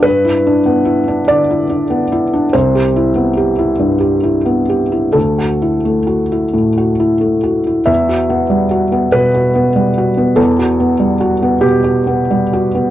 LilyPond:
\new Staff \with { instrumentName = "Felt piano" } { \time 6/8 \key e \minor \tempo 4. = 47 << { b'4. d''4. | c''2. | a'4. r4. | e''4. b'4. |
a'4. g'4. | } \\ { g,16 e'16 d'16 b16 e'16 d'16 d16 e'16 d'16 b16 e'16 d'16 | c,16 g'16 e'16 b16 g'16 e'16 g,16 g'16 e'16 b16 g'16 e'16 | d,16 fis'16 e'16 a16 fis'16 e'16 a,16 fis'16 e'16 a16 fis'16 e'16 | e,16 fis'16 b16 g16 fis'16 b16 b,16 fis'16 b16 g16 fis'16 b16 |
e,16 fis'16 b16 g16 fis'16 b16 b,16 fis'16 b16 g16 fis'16 b16 | } >> }